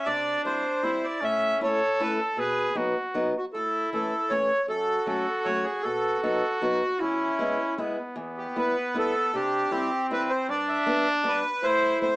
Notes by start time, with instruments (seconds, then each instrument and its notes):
0.05 steel-string acoustic guitar C3, trumpet D4, accordion D5
0.45 steel-string acoustic guitar G3 C4 E4, accordion C5
0.83 steel-string acoustic guitar G3 C4 E4, trumpet E4
1.04 accordion D5
1.21 steel-string acoustic guitar A2, trumpet C#4, accordion E5
1.61 steel-string acoustic guitar A3 C#4 E4, trumpet A4, accordion C#5
2.00 steel-string acoustic guitar A3 C#4 E4, accordion B4
2.20 accordion A4
2.37 steel-string acoustic guitar B2, trumpet G#4, accordion B4
2.75 steel-string acoustic guitar F#3 B3 D#4, trumpet F#4
3.14 steel-string acoustic guitar F#3 B3 D#4
3.37 accordion F#4
3.53 steel-string acoustic guitar A2, trumpet E4, accordion A4
3.92 steel-string acoustic guitar E3 A3 C#4, accordion A4
4.30 steel-string acoustic guitar E3 A3 C#4, accordion C#5
4.68 steel-string acoustic guitar F#2, trumpet F#4, accordion A4
5.06 steel-string acoustic guitar F#3 A3 C#4, accordion A4
5.45 steel-string acoustic guitar F#3 A3 C#4, accordion C#5
5.64 accordion G#4
5.82 steel-string acoustic guitar B2, trumpet F#4, accordion A4
6.23 steel-string acoustic guitar F#3 B3 D#4, accordion A4
6.61 steel-string acoustic guitar F#3 B3 D#4, accordion F#4
7.00 steel-string acoustic guitar E2, trumpet C#4, accordion E4
7.39 steel-string acoustic guitar G#3 B3 E4
7.78 steel-string acoustic guitar G#3 B3 E4, trumpet B3
8.16 steel-string acoustic guitar E2, trumpet B3
8.37 accordion G4
8.56 steel-string acoustic guitar G3 B3 E4, accordion B4
8.94 steel-string acoustic guitar G3 B3 E4, accordion A4
9.34 steel-string acoustic guitar C3, trumpet D4, accordion G4
9.71 steel-string acoustic guitar G3 C4 E4, trumpet C4
10.10 steel-string acoustic guitar G3 C4 E4, accordion B4
10.30 accordion C5
10.48 steel-string acoustic guitar G2, trumpet D4, accordion D5
10.69 accordion E5
10.86 steel-string acoustic guitar G3 B3 D4
11.08 accordion D5
11.24 steel-string acoustic guitar G3 B3 D4
11.28 accordion B4
11.63 steel-string acoustic guitar A2, trumpet E4, accordion C5
12.01 steel-string acoustic guitar A3 C4 E4, accordion C5